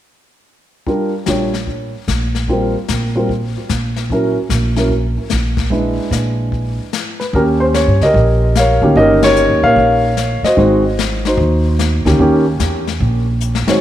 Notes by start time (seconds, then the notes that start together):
0.86 G3 D4 F4 A#4, brush sweep, kick
1.26 A#1 G3 D4 F4 C#5, snare, hi-hat pedal
1.54 snare
1.67 brush sweep, kick
2.08 A#1, snare, hi-hat pedal
2.35 snare
2.48 G3 C4 F4 A#4, brush sweep, kick
2.88 A#1, snare, hi-hat pedal
3.15 G3 C4 F4 A#4
3.29 brush sweep, kick
3.69 A#1, snare, hi-hat pedal
3.96 snare
4.10 F#3 C#4 E4 A#4, brush sweep, kick
4.49 A#1, snare, hi-hat pedal
4.76 F#3 C#4 E4 A#4, snare
4.90 brush sweep, kick
5.30 A#1, snare, hi-hat pedal
5.57 kick, snare
5.70 G#3 D4 E4 B4, brush sweep, kick
6.11 A#1, snare, hi-hat pedal
6.52 brush sweep, kick
6.93 snare, hi-hat pedal
7.20 B4, snare
7.33 D#2 C#4 G4 A#4, brush sweep, kick
7.60 C5
7.74 C#5, snare, hi-hat pedal
7.87 G2
8.01 C#2 G4 A#4 D#5, snare
8.14 A#1, brush sweep, kick
8.55 A#4 C#5 F5, snare, hi-hat pedal
8.82 D2 D#3 A#3 C#4 G4
8.96 G1 D#3 A#3 C#4 G4 A#4 D#5, brush sweep, kick
9.22 G4 A#4 C#5, snare, ride
9.36 hi-hat pedal
9.50 D#2
9.62 A#2 A#4 C#5 F5
9.76 A#1, brush sweep, kick
10.17 snare, hi-hat pedal
10.42 F#4 C5 D#5, muted upright bass stroke, snare
10.57 G#1 D#3 G#3 C4 F#4, brush sweep, kick
10.99 snare, hi-hat pedal
11.25 D#4 F#4 C5, snare
11.37 D#2, brush sweep, kick
11.79 snare, hi-hat pedal
12.05 D2 D#3 A#3 C#4 G4, snare
12.18 D#2 D#3 A#3 C#4 G4, brush sweep, kick
12.59 E2, snare, hi-hat pedal
12.87 snare
13.00 A#1, brush sweep, kick
13.40 hi-hat pedal
13.55 snare
13.67 D#3 G#3 C4 F#4 C#5, muted upright bass stroke, snare